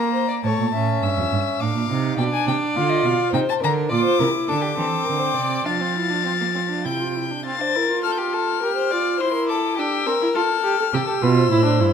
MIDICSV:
0, 0, Header, 1, 5, 480
1, 0, Start_track
1, 0, Key_signature, -2, "minor"
1, 0, Tempo, 579151
1, 368, Time_signature, 3, 2, 24, 8
1, 3242, Key_signature, -1, "major"
1, 4203, Tempo, 595238
1, 6603, Tempo, 578592
1, 9826, End_track
2, 0, Start_track
2, 0, Title_t, "Violin"
2, 0, Program_c, 0, 40
2, 0, Note_on_c, 0, 82, 79
2, 360, Note_off_c, 0, 82, 0
2, 365, Note_on_c, 0, 81, 77
2, 852, Note_on_c, 0, 88, 74
2, 865, Note_off_c, 0, 81, 0
2, 1323, Note_on_c, 0, 86, 76
2, 1335, Note_off_c, 0, 88, 0
2, 1798, Note_off_c, 0, 86, 0
2, 1803, Note_on_c, 0, 79, 95
2, 1853, Note_off_c, 0, 79, 0
2, 1931, Note_on_c, 0, 80, 95
2, 2049, Note_off_c, 0, 80, 0
2, 2055, Note_on_c, 0, 79, 85
2, 2121, Note_off_c, 0, 79, 0
2, 2286, Note_on_c, 0, 77, 86
2, 2400, Note_on_c, 0, 75, 85
2, 2413, Note_off_c, 0, 77, 0
2, 2532, Note_on_c, 0, 77, 96
2, 2544, Note_off_c, 0, 75, 0
2, 2762, Note_off_c, 0, 77, 0
2, 2767, Note_on_c, 0, 79, 91
2, 2814, Note_off_c, 0, 79, 0
2, 2891, Note_on_c, 0, 81, 101
2, 2937, Note_off_c, 0, 81, 0
2, 3015, Note_on_c, 0, 82, 83
2, 3081, Note_off_c, 0, 82, 0
2, 3248, Note_on_c, 0, 86, 97
2, 3713, Note_off_c, 0, 86, 0
2, 3723, Note_on_c, 0, 86, 99
2, 4663, Note_off_c, 0, 86, 0
2, 4684, Note_on_c, 0, 93, 90
2, 5642, Note_on_c, 0, 91, 69
2, 5654, Note_off_c, 0, 93, 0
2, 6117, Note_off_c, 0, 91, 0
2, 6122, Note_on_c, 0, 93, 94
2, 6566, Note_off_c, 0, 93, 0
2, 6592, Note_on_c, 0, 89, 68
2, 6657, Note_on_c, 0, 91, 69
2, 6670, Note_off_c, 0, 89, 0
2, 6714, Note_on_c, 0, 89, 83
2, 6727, Note_off_c, 0, 91, 0
2, 7562, Note_on_c, 0, 84, 99
2, 7574, Note_off_c, 0, 89, 0
2, 7793, Note_off_c, 0, 84, 0
2, 7798, Note_on_c, 0, 86, 78
2, 8053, Note_on_c, 0, 88, 83
2, 8066, Note_off_c, 0, 86, 0
2, 8512, Note_off_c, 0, 88, 0
2, 8517, Note_on_c, 0, 89, 82
2, 9005, Note_on_c, 0, 88, 96
2, 9018, Note_off_c, 0, 89, 0
2, 9826, Note_off_c, 0, 88, 0
2, 9826, End_track
3, 0, Start_track
3, 0, Title_t, "Violin"
3, 0, Program_c, 1, 40
3, 0, Note_on_c, 1, 70, 85
3, 107, Note_off_c, 1, 70, 0
3, 112, Note_on_c, 1, 72, 81
3, 228, Note_off_c, 1, 72, 0
3, 233, Note_on_c, 1, 74, 75
3, 284, Note_off_c, 1, 74, 0
3, 365, Note_on_c, 1, 73, 75
3, 593, Note_off_c, 1, 73, 0
3, 614, Note_on_c, 1, 76, 73
3, 1330, Note_on_c, 1, 77, 79
3, 1342, Note_off_c, 1, 76, 0
3, 1799, Note_off_c, 1, 77, 0
3, 1804, Note_on_c, 1, 74, 90
3, 2741, Note_off_c, 1, 74, 0
3, 2748, Note_on_c, 1, 72, 81
3, 2986, Note_on_c, 1, 70, 93
3, 2998, Note_off_c, 1, 72, 0
3, 3224, Note_on_c, 1, 74, 95
3, 3236, Note_off_c, 1, 70, 0
3, 3347, Note_off_c, 1, 74, 0
3, 3352, Note_on_c, 1, 72, 102
3, 3473, Note_off_c, 1, 72, 0
3, 3478, Note_on_c, 1, 70, 98
3, 3544, Note_off_c, 1, 70, 0
3, 3712, Note_on_c, 1, 69, 91
3, 3822, Note_on_c, 1, 67, 84
3, 3835, Note_off_c, 1, 69, 0
3, 3944, Note_off_c, 1, 67, 0
3, 3949, Note_on_c, 1, 69, 98
3, 4184, Note_on_c, 1, 70, 85
3, 4196, Note_off_c, 1, 69, 0
3, 4298, Note_on_c, 1, 72, 76
3, 4311, Note_off_c, 1, 70, 0
3, 4419, Note_on_c, 1, 74, 91
3, 4431, Note_off_c, 1, 72, 0
3, 4677, Note_on_c, 1, 77, 75
3, 4690, Note_off_c, 1, 74, 0
3, 5629, Note_off_c, 1, 77, 0
3, 5634, Note_on_c, 1, 79, 67
3, 6113, Note_off_c, 1, 79, 0
3, 6120, Note_on_c, 1, 77, 74
3, 6248, Note_on_c, 1, 72, 89
3, 6260, Note_off_c, 1, 77, 0
3, 6367, Note_on_c, 1, 70, 95
3, 6379, Note_off_c, 1, 72, 0
3, 6593, Note_off_c, 1, 70, 0
3, 6598, Note_on_c, 1, 69, 87
3, 6709, Note_on_c, 1, 67, 85
3, 6721, Note_off_c, 1, 69, 0
3, 6839, Note_on_c, 1, 69, 100
3, 6852, Note_off_c, 1, 67, 0
3, 7071, Note_off_c, 1, 69, 0
3, 7076, Note_on_c, 1, 70, 87
3, 7184, Note_off_c, 1, 70, 0
3, 7189, Note_on_c, 1, 72, 80
3, 7316, Note_on_c, 1, 74, 91
3, 7328, Note_off_c, 1, 72, 0
3, 7551, Note_off_c, 1, 74, 0
3, 7556, Note_on_c, 1, 72, 94
3, 7662, Note_off_c, 1, 72, 0
3, 7667, Note_on_c, 1, 70, 89
3, 7799, Note_on_c, 1, 69, 102
3, 7811, Note_off_c, 1, 70, 0
3, 8026, Note_off_c, 1, 69, 0
3, 8031, Note_on_c, 1, 67, 105
3, 8276, Note_on_c, 1, 70, 116
3, 8288, Note_off_c, 1, 67, 0
3, 8512, Note_on_c, 1, 69, 100
3, 8524, Note_off_c, 1, 70, 0
3, 8995, Note_off_c, 1, 69, 0
3, 9000, Note_on_c, 1, 67, 80
3, 9102, Note_off_c, 1, 67, 0
3, 9107, Note_on_c, 1, 69, 82
3, 9159, Note_off_c, 1, 69, 0
3, 9236, Note_on_c, 1, 71, 92
3, 9286, Note_off_c, 1, 71, 0
3, 9352, Note_on_c, 1, 72, 89
3, 9826, Note_off_c, 1, 72, 0
3, 9826, End_track
4, 0, Start_track
4, 0, Title_t, "Viola"
4, 0, Program_c, 2, 41
4, 0, Note_on_c, 2, 58, 90
4, 362, Note_off_c, 2, 58, 0
4, 376, Note_on_c, 2, 57, 71
4, 599, Note_off_c, 2, 57, 0
4, 619, Note_on_c, 2, 61, 72
4, 1341, Note_on_c, 2, 62, 62
4, 1353, Note_off_c, 2, 61, 0
4, 1568, Note_off_c, 2, 62, 0
4, 1573, Note_on_c, 2, 63, 66
4, 1805, Note_on_c, 2, 62, 88
4, 1817, Note_off_c, 2, 63, 0
4, 2286, Note_on_c, 2, 65, 93
4, 2299, Note_off_c, 2, 62, 0
4, 2757, Note_off_c, 2, 65, 0
4, 2762, Note_on_c, 2, 63, 78
4, 2828, Note_off_c, 2, 63, 0
4, 2998, Note_on_c, 2, 62, 66
4, 3227, Note_off_c, 2, 62, 0
4, 3232, Note_on_c, 2, 65, 92
4, 3469, Note_on_c, 2, 64, 82
4, 3482, Note_off_c, 2, 65, 0
4, 3719, Note_on_c, 2, 62, 87
4, 3731, Note_off_c, 2, 64, 0
4, 3951, Note_off_c, 2, 62, 0
4, 3956, Note_on_c, 2, 60, 87
4, 4672, Note_on_c, 2, 62, 71
4, 4684, Note_off_c, 2, 60, 0
4, 4797, Note_on_c, 2, 60, 57
4, 4809, Note_off_c, 2, 62, 0
4, 4919, Note_on_c, 2, 64, 63
4, 4931, Note_off_c, 2, 60, 0
4, 5035, Note_on_c, 2, 62, 63
4, 5047, Note_off_c, 2, 64, 0
4, 5147, Note_off_c, 2, 62, 0
4, 5152, Note_on_c, 2, 60, 60
4, 5202, Note_off_c, 2, 60, 0
4, 5278, Note_on_c, 2, 58, 55
4, 5327, Note_off_c, 2, 58, 0
4, 5393, Note_on_c, 2, 60, 69
4, 5444, Note_off_c, 2, 60, 0
4, 5508, Note_on_c, 2, 62, 60
4, 5634, Note_on_c, 2, 64, 59
4, 5646, Note_off_c, 2, 62, 0
4, 5757, Note_on_c, 2, 65, 61
4, 5769, Note_off_c, 2, 64, 0
4, 5883, Note_on_c, 2, 64, 52
4, 5895, Note_off_c, 2, 65, 0
4, 6006, Note_on_c, 2, 62, 55
4, 6018, Note_off_c, 2, 64, 0
4, 6117, Note_off_c, 2, 62, 0
4, 6122, Note_on_c, 2, 60, 76
4, 6236, Note_off_c, 2, 60, 0
4, 6243, Note_on_c, 2, 62, 60
4, 6365, Note_on_c, 2, 64, 71
4, 6377, Note_off_c, 2, 62, 0
4, 6472, Note_off_c, 2, 64, 0
4, 6477, Note_on_c, 2, 65, 74
4, 7067, Note_off_c, 2, 65, 0
4, 7081, Note_on_c, 2, 67, 73
4, 7325, Note_on_c, 2, 65, 75
4, 7338, Note_off_c, 2, 67, 0
4, 7561, Note_off_c, 2, 65, 0
4, 7566, Note_on_c, 2, 64, 91
4, 8044, Note_on_c, 2, 62, 81
4, 8056, Note_off_c, 2, 64, 0
4, 8272, Note_off_c, 2, 62, 0
4, 8277, Note_on_c, 2, 60, 82
4, 8326, Note_off_c, 2, 60, 0
4, 8398, Note_on_c, 2, 64, 90
4, 8447, Note_off_c, 2, 64, 0
4, 8514, Note_on_c, 2, 65, 75
4, 8580, Note_off_c, 2, 65, 0
4, 8752, Note_on_c, 2, 67, 81
4, 8872, Note_off_c, 2, 67, 0
4, 8877, Note_on_c, 2, 69, 73
4, 8926, Note_off_c, 2, 69, 0
4, 8996, Note_on_c, 2, 67, 83
4, 9045, Note_off_c, 2, 67, 0
4, 9113, Note_on_c, 2, 67, 85
4, 9238, Note_on_c, 2, 65, 100
4, 9251, Note_off_c, 2, 67, 0
4, 9468, Note_off_c, 2, 65, 0
4, 9473, Note_on_c, 2, 64, 116
4, 9587, Note_off_c, 2, 64, 0
4, 9592, Note_on_c, 2, 62, 92
4, 9716, Note_on_c, 2, 64, 104
4, 9729, Note_off_c, 2, 62, 0
4, 9826, Note_off_c, 2, 64, 0
4, 9826, End_track
5, 0, Start_track
5, 0, Title_t, "Cello"
5, 0, Program_c, 3, 42
5, 362, Note_on_c, 3, 45, 74
5, 412, Note_off_c, 3, 45, 0
5, 489, Note_on_c, 3, 46, 63
5, 604, Note_off_c, 3, 46, 0
5, 609, Note_on_c, 3, 45, 74
5, 843, Note_off_c, 3, 45, 0
5, 848, Note_on_c, 3, 43, 75
5, 898, Note_off_c, 3, 43, 0
5, 972, Note_on_c, 3, 41, 76
5, 1020, Note_off_c, 3, 41, 0
5, 1093, Note_on_c, 3, 43, 70
5, 1159, Note_off_c, 3, 43, 0
5, 1328, Note_on_c, 3, 45, 68
5, 1444, Note_off_c, 3, 45, 0
5, 1449, Note_on_c, 3, 46, 75
5, 1498, Note_off_c, 3, 46, 0
5, 1569, Note_on_c, 3, 48, 80
5, 1801, Note_off_c, 3, 48, 0
5, 1806, Note_on_c, 3, 47, 78
5, 1873, Note_off_c, 3, 47, 0
5, 2049, Note_on_c, 3, 48, 75
5, 2115, Note_off_c, 3, 48, 0
5, 2288, Note_on_c, 3, 50, 76
5, 2519, Note_off_c, 3, 50, 0
5, 2524, Note_on_c, 3, 47, 70
5, 2591, Note_off_c, 3, 47, 0
5, 2761, Note_on_c, 3, 48, 81
5, 2827, Note_off_c, 3, 48, 0
5, 2998, Note_on_c, 3, 50, 81
5, 3235, Note_off_c, 3, 50, 0
5, 3242, Note_on_c, 3, 46, 80
5, 3308, Note_off_c, 3, 46, 0
5, 3481, Note_on_c, 3, 48, 86
5, 3547, Note_off_c, 3, 48, 0
5, 3719, Note_on_c, 3, 50, 69
5, 3951, Note_off_c, 3, 50, 0
5, 3956, Note_on_c, 3, 52, 66
5, 4022, Note_off_c, 3, 52, 0
5, 4203, Note_on_c, 3, 50, 58
5, 4434, Note_off_c, 3, 50, 0
5, 4439, Note_on_c, 3, 48, 64
5, 4670, Note_off_c, 3, 48, 0
5, 4675, Note_on_c, 3, 53, 68
5, 5640, Note_on_c, 3, 48, 61
5, 5652, Note_off_c, 3, 53, 0
5, 6126, Note_off_c, 3, 48, 0
5, 9000, Note_on_c, 3, 48, 86
5, 9067, Note_off_c, 3, 48, 0
5, 9239, Note_on_c, 3, 47, 91
5, 9470, Note_off_c, 3, 47, 0
5, 9475, Note_on_c, 3, 45, 80
5, 9715, Note_on_c, 3, 43, 81
5, 9728, Note_off_c, 3, 45, 0
5, 9826, Note_off_c, 3, 43, 0
5, 9826, End_track
0, 0, End_of_file